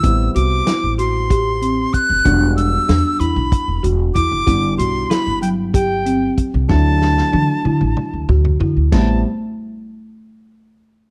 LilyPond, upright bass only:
\new Staff \with { instrumentName = "Upright bass" } { \clef bass \time 7/8 \key a \dorian \tempo 4 = 94 a,,8 c,8 r16 a,,2 fis,,16 | e,,4 e,16 r16 e,16 b,,16 r16 e,,16 e,,8 e,16 fis,,16 | g,,8 b,,8 r16 g,,2 c,16 | d,4 d16 r16 d16 a,,16 r16 d,16 d,8 d16 d,16 |
a,,8 r2. | }